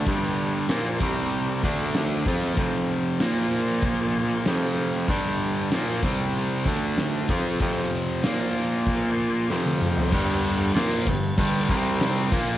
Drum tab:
CC |----------------|----------------|----------------|----------------|
HH |o-o-o-o-o-o-o-o-|o-o-o-o-o-o-o-o-|o-o-o-o-o---o-o-|o-o-o-o-o-o-----|
SD |----o-------o--o|----o-------o---|----o-----o-o---|----o-------o---|
T1 |----------------|----------------|----------------|-------------o--|
T2 |----------------|----------------|----------------|--------------o-|
FT |----------------|----------------|----------------|---------------o|
BD |o-----o---o---o-|o-------o-------|o-----o---o---o-|o-------o-------|

CC |x-x-x-x-x-x-x-x-|
HH |----------------|
SD |----o-------o---|
T1 |----------------|
T2 |----------------|
FT |----------------|
BD |o-----o-o-o---o-|